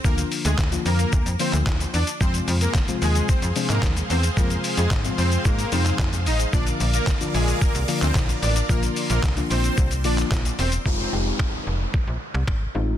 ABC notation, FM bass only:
X:1
M:4/4
L:1/16
Q:1/4=111
K:Fdor
V:1 name="FM bass" clef=bass
D,,2 z D,, D,,2 F,,2 D,, F,, z D,, z2 =E,, z | F,,2 F,,2 z2 E,,2 z F,, z A,, E,,2 =E,,2 | F,,2 z F,, A,,2 F,,2 A,,2 F,,2 F,,2 =A,,,2 | B,,,2 B,,,2 z2 B,,,2 z C,, z D,, B,,,2 =A,,,2 |
B,,,2 z B,,, C,,2 B,,,2 C,,2 B,,,2 B,,,2 =E,,,2 | F,,,2 F,,,2 z2 F,,,2 z B,,, z C,, A,,,2 =A,,,2 |]